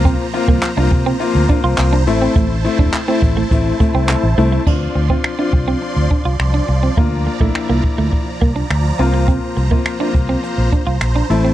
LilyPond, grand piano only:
\new Staff \with { instrumentName = "Grand piano" } { \time 4/4 \key d \minor \tempo 4 = 104 <bes c' f'>16 r16 <bes c' f'>8 r16 <bes c' f'>8 r16 <bes c' f'>16 r16 <bes c' f'>8. r16 <a c' e'>8~ | <a c' e'>16 r16 <a c' e'>8 r16 <a c' e'>8 r16 <a c' e'>16 r16 <a c' e'>8. r16 <a c' e'>16 r16 | <c' d' f'>8 r16 <c' d' f'>16 r16 <c' d' f'>4. r4 r16 | <bes d' f'>8 r16 <bes d' e'>4. r4 r16 <bes c' f'>8~ |
<bes c' f'>8 r16 <bes c' f'>16 r16 <bes c' f'>4. r8. <a c' e'>8 | }